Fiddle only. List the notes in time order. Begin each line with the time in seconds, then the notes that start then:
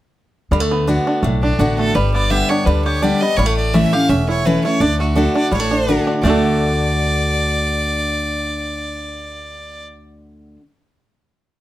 1.42 D4
1.59 F#4
1.78 A4
1.95 B4
2.14 D5
2.31 E5
2.49 C#5
2.65 B4
2.84 C#5
3.02 D5
3.21 D#5
3.36 C#5
3.57 D5
3.74 E5
3.93 F5
4.09 E5
4.28 C#5
4.45 B4
4.64 C#5
4.80 D5
4.99 F#4
5.16 A4
5.35 D5
5.53 C#5
6.21 D5